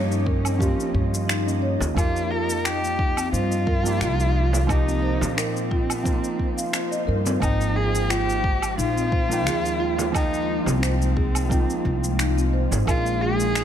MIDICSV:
0, 0, Header, 1, 8, 480
1, 0, Start_track
1, 0, Tempo, 681818
1, 1384, Time_signature, 4, 2, 24, 8
1, 9603, End_track
2, 0, Start_track
2, 0, Title_t, "Marimba"
2, 0, Program_c, 0, 12
2, 184, Note_on_c, 0, 70, 78
2, 412, Note_off_c, 0, 70, 0
2, 423, Note_on_c, 0, 67, 103
2, 545, Note_off_c, 0, 67, 0
2, 902, Note_on_c, 0, 63, 80
2, 1018, Note_off_c, 0, 63, 0
2, 1029, Note_on_c, 0, 61, 74
2, 1094, Note_off_c, 0, 61, 0
2, 1141, Note_on_c, 0, 73, 85
2, 1264, Note_off_c, 0, 73, 0
2, 1382, Note_on_c, 0, 70, 82
2, 1612, Note_off_c, 0, 70, 0
2, 1624, Note_on_c, 0, 65, 103
2, 1745, Note_off_c, 0, 65, 0
2, 2103, Note_on_c, 0, 63, 78
2, 2218, Note_off_c, 0, 63, 0
2, 2230, Note_on_c, 0, 60, 82
2, 2295, Note_off_c, 0, 60, 0
2, 2342, Note_on_c, 0, 72, 82
2, 2464, Note_off_c, 0, 72, 0
2, 2581, Note_on_c, 0, 70, 86
2, 2811, Note_off_c, 0, 70, 0
2, 2818, Note_on_c, 0, 65, 98
2, 2942, Note_off_c, 0, 65, 0
2, 3299, Note_on_c, 0, 63, 84
2, 3416, Note_off_c, 0, 63, 0
2, 3424, Note_on_c, 0, 60, 85
2, 3492, Note_off_c, 0, 60, 0
2, 3538, Note_on_c, 0, 72, 80
2, 3662, Note_off_c, 0, 72, 0
2, 3781, Note_on_c, 0, 70, 81
2, 4011, Note_off_c, 0, 70, 0
2, 4020, Note_on_c, 0, 65, 100
2, 4143, Note_off_c, 0, 65, 0
2, 4626, Note_on_c, 0, 77, 72
2, 4730, Note_off_c, 0, 77, 0
2, 4739, Note_on_c, 0, 65, 79
2, 4863, Note_off_c, 0, 65, 0
2, 4867, Note_on_c, 0, 75, 74
2, 4976, Note_off_c, 0, 75, 0
2, 4979, Note_on_c, 0, 70, 79
2, 5096, Note_off_c, 0, 70, 0
2, 5107, Note_on_c, 0, 60, 95
2, 5211, Note_off_c, 0, 60, 0
2, 5222, Note_on_c, 0, 72, 82
2, 5344, Note_off_c, 0, 72, 0
2, 5462, Note_on_c, 0, 68, 76
2, 5692, Note_off_c, 0, 68, 0
2, 5698, Note_on_c, 0, 65, 94
2, 5822, Note_off_c, 0, 65, 0
2, 6178, Note_on_c, 0, 63, 83
2, 6296, Note_off_c, 0, 63, 0
2, 6307, Note_on_c, 0, 60, 78
2, 6373, Note_off_c, 0, 60, 0
2, 6419, Note_on_c, 0, 72, 79
2, 6543, Note_off_c, 0, 72, 0
2, 6659, Note_on_c, 0, 68, 76
2, 6890, Note_off_c, 0, 68, 0
2, 6900, Note_on_c, 0, 65, 109
2, 7023, Note_off_c, 0, 65, 0
2, 7380, Note_on_c, 0, 63, 80
2, 7497, Note_off_c, 0, 63, 0
2, 7509, Note_on_c, 0, 60, 78
2, 7574, Note_off_c, 0, 60, 0
2, 7621, Note_on_c, 0, 72, 83
2, 7744, Note_off_c, 0, 72, 0
2, 7860, Note_on_c, 0, 68, 76
2, 8091, Note_off_c, 0, 68, 0
2, 8098, Note_on_c, 0, 65, 102
2, 8222, Note_off_c, 0, 65, 0
2, 8583, Note_on_c, 0, 63, 76
2, 8698, Note_off_c, 0, 63, 0
2, 8710, Note_on_c, 0, 60, 76
2, 8775, Note_off_c, 0, 60, 0
2, 8823, Note_on_c, 0, 72, 81
2, 8945, Note_off_c, 0, 72, 0
2, 9062, Note_on_c, 0, 70, 79
2, 9292, Note_off_c, 0, 70, 0
2, 9302, Note_on_c, 0, 68, 107
2, 9424, Note_off_c, 0, 68, 0
2, 9603, End_track
3, 0, Start_track
3, 0, Title_t, "Ambient pad"
3, 0, Program_c, 1, 92
3, 0, Note_on_c, 1, 58, 78
3, 0, Note_on_c, 1, 63, 73
3, 0, Note_on_c, 1, 67, 80
3, 0, Note_on_c, 1, 73, 90
3, 0, Note_on_c, 1, 75, 79
3, 1386, Note_off_c, 1, 73, 0
3, 2144, Note_on_c, 1, 65, 92
3, 2230, Note_off_c, 1, 67, 0
3, 2755, Note_on_c, 1, 72, 71
3, 5223, Note_on_c, 1, 56, 82
3, 6761, Note_off_c, 1, 58, 0
3, 9063, Note_off_c, 1, 72, 0
3, 9156, Note_on_c, 1, 61, 85
3, 9603, Note_off_c, 1, 56, 0
3, 9603, Note_off_c, 1, 61, 0
3, 9603, Note_off_c, 1, 63, 0
3, 9603, Note_off_c, 1, 65, 0
3, 9603, Note_off_c, 1, 75, 0
3, 9603, End_track
4, 0, Start_track
4, 0, Title_t, "Cello"
4, 0, Program_c, 2, 42
4, 0, Note_on_c, 2, 61, 91
4, 1118, Note_off_c, 2, 61, 0
4, 1385, Note_on_c, 2, 65, 107
4, 1625, Note_on_c, 2, 70, 104
4, 1635, Note_off_c, 2, 65, 0
4, 1862, Note_on_c, 2, 67, 105
4, 1873, Note_off_c, 2, 70, 0
4, 2340, Note_off_c, 2, 67, 0
4, 2344, Note_on_c, 2, 65, 116
4, 3306, Note_on_c, 2, 63, 99
4, 3317, Note_off_c, 2, 65, 0
4, 3792, Note_on_c, 2, 60, 93
4, 3802, Note_off_c, 2, 63, 0
4, 4988, Note_off_c, 2, 60, 0
4, 5218, Note_on_c, 2, 63, 101
4, 5462, Note_on_c, 2, 68, 101
4, 5473, Note_off_c, 2, 63, 0
4, 5703, Note_on_c, 2, 67, 110
4, 5713, Note_off_c, 2, 68, 0
4, 6183, Note_off_c, 2, 67, 0
4, 6187, Note_on_c, 2, 65, 118
4, 7117, Note_off_c, 2, 65, 0
4, 7148, Note_on_c, 2, 63, 97
4, 7552, Note_off_c, 2, 63, 0
4, 7580, Note_on_c, 2, 61, 58
4, 7624, Note_on_c, 2, 60, 92
4, 7634, Note_off_c, 2, 61, 0
4, 8824, Note_off_c, 2, 60, 0
4, 9063, Note_on_c, 2, 65, 114
4, 9303, Note_on_c, 2, 68, 118
4, 9314, Note_off_c, 2, 65, 0
4, 9603, Note_off_c, 2, 68, 0
4, 9603, End_track
5, 0, Start_track
5, 0, Title_t, "Felt piano"
5, 0, Program_c, 3, 0
5, 0, Control_c, 3, 64, 127
5, 0, Note_on_c, 3, 53, 95
5, 0, Note_on_c, 3, 58, 87
5, 0, Note_on_c, 3, 63, 86
5, 0, Note_on_c, 3, 67, 108
5, 390, Note_off_c, 3, 53, 0
5, 394, Note_off_c, 3, 58, 0
5, 399, Note_off_c, 3, 63, 0
5, 404, Note_off_c, 3, 67, 0
5, 413, Note_on_c, 3, 53, 76
5, 422, Note_on_c, 3, 58, 64
5, 431, Note_on_c, 3, 63, 68
5, 442, Note_on_c, 3, 65, 84
5, 1351, Note_off_c, 3, 53, 0
5, 1356, Note_off_c, 3, 58, 0
5, 1360, Note_off_c, 3, 63, 0
5, 1366, Note_off_c, 3, 65, 0
5, 1369, Note_on_c, 3, 53, 77
5, 1376, Note_on_c, 3, 58, 67
5, 1389, Note_on_c, 3, 63, 70
5, 1392, Control_c, 3, 64, 0
5, 1397, Note_on_c, 3, 67, 79
5, 1516, Control_c, 3, 64, 127
5, 2674, Note_off_c, 3, 53, 0
5, 2677, Note_off_c, 3, 58, 0
5, 2683, Note_off_c, 3, 63, 0
5, 2687, Note_off_c, 3, 67, 0
5, 2698, Note_on_c, 3, 53, 82
5, 2709, Note_on_c, 3, 58, 77
5, 2720, Note_on_c, 3, 63, 77
5, 2728, Note_on_c, 3, 67, 92
5, 3270, Note_off_c, 3, 53, 0
5, 3276, Note_off_c, 3, 58, 0
5, 3281, Note_off_c, 3, 63, 0
5, 3285, Note_off_c, 3, 67, 0
5, 3288, Note_on_c, 3, 53, 97
5, 3297, Note_on_c, 3, 58, 92
5, 3307, Note_on_c, 3, 63, 87
5, 3319, Note_on_c, 3, 67, 104
5, 4229, Note_off_c, 3, 53, 0
5, 4234, Note_off_c, 3, 58, 0
5, 4239, Note_off_c, 3, 63, 0
5, 4244, Note_off_c, 3, 67, 0
5, 4249, Note_on_c, 3, 53, 75
5, 4260, Note_on_c, 3, 58, 70
5, 4271, Note_on_c, 3, 63, 70
5, 4277, Note_on_c, 3, 65, 80
5, 5189, Note_off_c, 3, 53, 0
5, 5195, Note_off_c, 3, 58, 0
5, 5200, Note_off_c, 3, 63, 0
5, 5203, Note_off_c, 3, 65, 0
5, 5211, Note_on_c, 3, 53, 76
5, 5220, Note_on_c, 3, 58, 69
5, 5228, Note_on_c, 3, 63, 66
5, 5234, Control_c, 3, 64, 0
5, 5239, Note_on_c, 3, 79, 88
5, 5374, Control_c, 3, 64, 127
5, 6514, Note_off_c, 3, 53, 0
5, 6519, Note_off_c, 3, 58, 0
5, 6523, Note_off_c, 3, 63, 0
5, 6529, Note_off_c, 3, 79, 0
5, 6538, Note_on_c, 3, 53, 85
5, 6546, Note_on_c, 3, 58, 75
5, 6558, Note_on_c, 3, 63, 78
5, 6568, Note_on_c, 3, 79, 97
5, 7110, Note_off_c, 3, 53, 0
5, 7114, Note_off_c, 3, 58, 0
5, 7120, Note_off_c, 3, 63, 0
5, 7124, Note_on_c, 3, 53, 100
5, 7125, Note_off_c, 3, 79, 0
5, 7135, Note_on_c, 3, 58, 89
5, 7145, Note_on_c, 3, 63, 95
5, 7153, Note_on_c, 3, 79, 102
5, 8067, Note_off_c, 3, 53, 0
5, 8072, Note_off_c, 3, 58, 0
5, 8078, Note_off_c, 3, 63, 0
5, 8082, Note_off_c, 3, 79, 0
5, 8086, Note_on_c, 3, 53, 81
5, 8093, Note_on_c, 3, 58, 69
5, 8104, Note_on_c, 3, 63, 73
5, 8112, Note_on_c, 3, 79, 82
5, 9028, Note_off_c, 3, 53, 0
5, 9031, Note_off_c, 3, 58, 0
5, 9037, Note_off_c, 3, 63, 0
5, 9041, Note_off_c, 3, 79, 0
5, 9049, Note_on_c, 3, 53, 78
5, 9059, Note_on_c, 3, 58, 72
5, 9068, Note_on_c, 3, 63, 74
5, 9072, Control_c, 3, 64, 0
5, 9077, Note_on_c, 3, 68, 87
5, 9213, Control_c, 3, 64, 127
5, 9603, Note_off_c, 3, 53, 0
5, 9603, Note_off_c, 3, 58, 0
5, 9603, Note_off_c, 3, 63, 0
5, 9603, Note_off_c, 3, 68, 0
5, 9603, End_track
6, 0, Start_track
6, 0, Title_t, "Upright bass"
6, 0, Program_c, 4, 32
6, 0, Note_on_c, 4, 43, 97
6, 508, Note_off_c, 4, 43, 0
6, 666, Note_on_c, 4, 43, 97
6, 1229, Note_off_c, 4, 43, 0
6, 1273, Note_on_c, 4, 39, 94
6, 1361, Note_off_c, 4, 39, 0
6, 1383, Note_on_c, 4, 41, 95
6, 2305, Note_off_c, 4, 41, 0
6, 2343, Note_on_c, 4, 43, 98
6, 2823, Note_on_c, 4, 36, 98
6, 2833, Note_off_c, 4, 43, 0
6, 3628, Note_off_c, 4, 36, 0
6, 3674, Note_on_c, 4, 46, 89
6, 4349, Note_off_c, 4, 46, 0
6, 4986, Note_on_c, 4, 43, 83
6, 5177, Note_off_c, 4, 43, 0
6, 5223, Note_on_c, 4, 32, 102
6, 6145, Note_off_c, 4, 32, 0
6, 6180, Note_on_c, 4, 34, 97
6, 6666, Note_off_c, 4, 34, 0
6, 6666, Note_on_c, 4, 39, 99
6, 7469, Note_off_c, 4, 39, 0
6, 7507, Note_on_c, 4, 36, 95
6, 8186, Note_off_c, 4, 36, 0
6, 8343, Note_on_c, 4, 36, 101
6, 8908, Note_off_c, 4, 36, 0
6, 8950, Note_on_c, 4, 32, 93
6, 9039, Note_off_c, 4, 32, 0
6, 9063, Note_on_c, 4, 34, 104
6, 9603, Note_off_c, 4, 34, 0
6, 9603, End_track
7, 0, Start_track
7, 0, Title_t, "Frame drum"
7, 1271, Note_on_c, 9, 64, 97
7, 1341, Note_off_c, 9, 64, 0
7, 3188, Note_on_c, 9, 64, 85
7, 3259, Note_off_c, 9, 64, 0
7, 3670, Note_on_c, 9, 64, 94
7, 3740, Note_off_c, 9, 64, 0
7, 5114, Note_on_c, 9, 64, 90
7, 5185, Note_off_c, 9, 64, 0
7, 7029, Note_on_c, 9, 64, 91
7, 7099, Note_off_c, 9, 64, 0
7, 7507, Note_on_c, 9, 64, 87
7, 7577, Note_off_c, 9, 64, 0
7, 8954, Note_on_c, 9, 64, 83
7, 9025, Note_off_c, 9, 64, 0
7, 9603, End_track
8, 0, Start_track
8, 0, Title_t, "Drums"
8, 82, Note_on_c, 9, 82, 34
8, 152, Note_off_c, 9, 82, 0
8, 186, Note_on_c, 9, 36, 113
8, 257, Note_off_c, 9, 36, 0
8, 316, Note_on_c, 9, 77, 63
8, 322, Note_on_c, 9, 82, 76
8, 387, Note_off_c, 9, 77, 0
8, 392, Note_off_c, 9, 82, 0
8, 426, Note_on_c, 9, 36, 119
8, 435, Note_on_c, 9, 82, 59
8, 496, Note_off_c, 9, 36, 0
8, 505, Note_off_c, 9, 82, 0
8, 564, Note_on_c, 9, 82, 36
8, 635, Note_off_c, 9, 82, 0
8, 665, Note_on_c, 9, 36, 67
8, 736, Note_off_c, 9, 36, 0
8, 804, Note_on_c, 9, 82, 73
8, 875, Note_off_c, 9, 82, 0
8, 911, Note_on_c, 9, 26, 105
8, 916, Note_on_c, 9, 82, 56
8, 981, Note_off_c, 9, 26, 0
8, 986, Note_off_c, 9, 82, 0
8, 1045, Note_on_c, 9, 82, 34
8, 1116, Note_off_c, 9, 82, 0
8, 1281, Note_on_c, 9, 82, 71
8, 1352, Note_off_c, 9, 82, 0
8, 1385, Note_on_c, 9, 36, 114
8, 1390, Note_on_c, 9, 77, 75
8, 1395, Note_on_c, 9, 82, 57
8, 1455, Note_off_c, 9, 36, 0
8, 1461, Note_off_c, 9, 77, 0
8, 1466, Note_off_c, 9, 82, 0
8, 1522, Note_on_c, 9, 82, 33
8, 1593, Note_off_c, 9, 82, 0
8, 1758, Note_on_c, 9, 82, 65
8, 1828, Note_off_c, 9, 82, 0
8, 1867, Note_on_c, 9, 26, 107
8, 1872, Note_on_c, 9, 82, 56
8, 1937, Note_off_c, 9, 26, 0
8, 1943, Note_off_c, 9, 82, 0
8, 2002, Note_on_c, 9, 82, 36
8, 2073, Note_off_c, 9, 82, 0
8, 2104, Note_on_c, 9, 36, 112
8, 2175, Note_off_c, 9, 36, 0
8, 2233, Note_on_c, 9, 77, 66
8, 2238, Note_on_c, 9, 82, 73
8, 2303, Note_off_c, 9, 77, 0
8, 2309, Note_off_c, 9, 82, 0
8, 2352, Note_on_c, 9, 82, 59
8, 2423, Note_off_c, 9, 82, 0
8, 2477, Note_on_c, 9, 82, 36
8, 2547, Note_off_c, 9, 82, 0
8, 2584, Note_on_c, 9, 36, 116
8, 2654, Note_off_c, 9, 36, 0
8, 2716, Note_on_c, 9, 82, 71
8, 2786, Note_off_c, 9, 82, 0
8, 2823, Note_on_c, 9, 26, 101
8, 2828, Note_on_c, 9, 82, 60
8, 2893, Note_off_c, 9, 26, 0
8, 2899, Note_off_c, 9, 82, 0
8, 2956, Note_on_c, 9, 82, 39
8, 3026, Note_off_c, 9, 82, 0
8, 3199, Note_on_c, 9, 82, 71
8, 3270, Note_off_c, 9, 82, 0
8, 3303, Note_on_c, 9, 36, 119
8, 3304, Note_on_c, 9, 77, 73
8, 3310, Note_on_c, 9, 82, 59
8, 3373, Note_off_c, 9, 36, 0
8, 3375, Note_off_c, 9, 77, 0
8, 3380, Note_off_c, 9, 82, 0
8, 3441, Note_on_c, 9, 82, 33
8, 3511, Note_off_c, 9, 82, 0
8, 3680, Note_on_c, 9, 82, 66
8, 3751, Note_off_c, 9, 82, 0
8, 3787, Note_on_c, 9, 26, 102
8, 3792, Note_on_c, 9, 82, 59
8, 3857, Note_off_c, 9, 26, 0
8, 3862, Note_off_c, 9, 82, 0
8, 3918, Note_on_c, 9, 82, 32
8, 3989, Note_off_c, 9, 82, 0
8, 4023, Note_on_c, 9, 36, 109
8, 4093, Note_off_c, 9, 36, 0
8, 4152, Note_on_c, 9, 77, 61
8, 4158, Note_on_c, 9, 82, 76
8, 4223, Note_off_c, 9, 77, 0
8, 4228, Note_off_c, 9, 82, 0
8, 4262, Note_on_c, 9, 36, 109
8, 4266, Note_on_c, 9, 82, 55
8, 4333, Note_off_c, 9, 36, 0
8, 4336, Note_off_c, 9, 82, 0
8, 4394, Note_on_c, 9, 82, 39
8, 4464, Note_off_c, 9, 82, 0
8, 4502, Note_on_c, 9, 36, 62
8, 4572, Note_off_c, 9, 36, 0
8, 4634, Note_on_c, 9, 82, 70
8, 4705, Note_off_c, 9, 82, 0
8, 4741, Note_on_c, 9, 26, 94
8, 4746, Note_on_c, 9, 82, 60
8, 4811, Note_off_c, 9, 26, 0
8, 4817, Note_off_c, 9, 82, 0
8, 4875, Note_on_c, 9, 82, 36
8, 4946, Note_off_c, 9, 82, 0
8, 5112, Note_on_c, 9, 82, 74
8, 5183, Note_off_c, 9, 82, 0
8, 5222, Note_on_c, 9, 36, 113
8, 5224, Note_on_c, 9, 77, 72
8, 5230, Note_on_c, 9, 82, 52
8, 5292, Note_off_c, 9, 36, 0
8, 5295, Note_off_c, 9, 77, 0
8, 5300, Note_off_c, 9, 82, 0
8, 5357, Note_on_c, 9, 82, 32
8, 5427, Note_off_c, 9, 82, 0
8, 5597, Note_on_c, 9, 82, 63
8, 5668, Note_off_c, 9, 82, 0
8, 5705, Note_on_c, 9, 26, 96
8, 5710, Note_on_c, 9, 82, 55
8, 5775, Note_off_c, 9, 26, 0
8, 5781, Note_off_c, 9, 82, 0
8, 5840, Note_on_c, 9, 82, 31
8, 5911, Note_off_c, 9, 82, 0
8, 5942, Note_on_c, 9, 36, 113
8, 6012, Note_off_c, 9, 36, 0
8, 6072, Note_on_c, 9, 77, 64
8, 6077, Note_on_c, 9, 82, 69
8, 6142, Note_off_c, 9, 77, 0
8, 6147, Note_off_c, 9, 82, 0
8, 6189, Note_on_c, 9, 82, 56
8, 6260, Note_off_c, 9, 82, 0
8, 6319, Note_on_c, 9, 82, 36
8, 6389, Note_off_c, 9, 82, 0
8, 6422, Note_on_c, 9, 36, 119
8, 6493, Note_off_c, 9, 36, 0
8, 6559, Note_on_c, 9, 82, 71
8, 6629, Note_off_c, 9, 82, 0
8, 6665, Note_on_c, 9, 26, 97
8, 6670, Note_on_c, 9, 82, 57
8, 6735, Note_off_c, 9, 26, 0
8, 6741, Note_off_c, 9, 82, 0
8, 6798, Note_on_c, 9, 82, 36
8, 6868, Note_off_c, 9, 82, 0
8, 7035, Note_on_c, 9, 82, 70
8, 7106, Note_off_c, 9, 82, 0
8, 7142, Note_on_c, 9, 36, 107
8, 7143, Note_on_c, 9, 77, 81
8, 7148, Note_on_c, 9, 82, 54
8, 7212, Note_off_c, 9, 36, 0
8, 7214, Note_off_c, 9, 77, 0
8, 7219, Note_off_c, 9, 82, 0
8, 7277, Note_on_c, 9, 82, 29
8, 7348, Note_off_c, 9, 82, 0
8, 7517, Note_on_c, 9, 82, 65
8, 7588, Note_off_c, 9, 82, 0
8, 7624, Note_on_c, 9, 26, 100
8, 7629, Note_on_c, 9, 82, 60
8, 7694, Note_off_c, 9, 26, 0
8, 7700, Note_off_c, 9, 82, 0
8, 7757, Note_on_c, 9, 82, 31
8, 7828, Note_off_c, 9, 82, 0
8, 7862, Note_on_c, 9, 36, 103
8, 7932, Note_off_c, 9, 36, 0
8, 7991, Note_on_c, 9, 77, 65
8, 7996, Note_on_c, 9, 82, 68
8, 8061, Note_off_c, 9, 77, 0
8, 8066, Note_off_c, 9, 82, 0
8, 8103, Note_on_c, 9, 36, 106
8, 8108, Note_on_c, 9, 82, 57
8, 8173, Note_off_c, 9, 36, 0
8, 8179, Note_off_c, 9, 82, 0
8, 8237, Note_on_c, 9, 82, 35
8, 8308, Note_off_c, 9, 82, 0
8, 8343, Note_on_c, 9, 36, 60
8, 8413, Note_off_c, 9, 36, 0
8, 8476, Note_on_c, 9, 82, 66
8, 8546, Note_off_c, 9, 82, 0
8, 8583, Note_on_c, 9, 26, 93
8, 8588, Note_on_c, 9, 82, 52
8, 8653, Note_off_c, 9, 26, 0
8, 8658, Note_off_c, 9, 82, 0
8, 8717, Note_on_c, 9, 82, 34
8, 8787, Note_off_c, 9, 82, 0
8, 8957, Note_on_c, 9, 82, 67
8, 9028, Note_off_c, 9, 82, 0
8, 9063, Note_on_c, 9, 36, 110
8, 9066, Note_on_c, 9, 77, 84
8, 9072, Note_on_c, 9, 82, 56
8, 9133, Note_off_c, 9, 36, 0
8, 9137, Note_off_c, 9, 77, 0
8, 9142, Note_off_c, 9, 82, 0
8, 9195, Note_on_c, 9, 82, 32
8, 9266, Note_off_c, 9, 82, 0
8, 9434, Note_on_c, 9, 82, 61
8, 9504, Note_off_c, 9, 82, 0
8, 9543, Note_on_c, 9, 26, 98
8, 9548, Note_on_c, 9, 82, 57
8, 9603, Note_off_c, 9, 26, 0
8, 9603, Note_off_c, 9, 82, 0
8, 9603, End_track
0, 0, End_of_file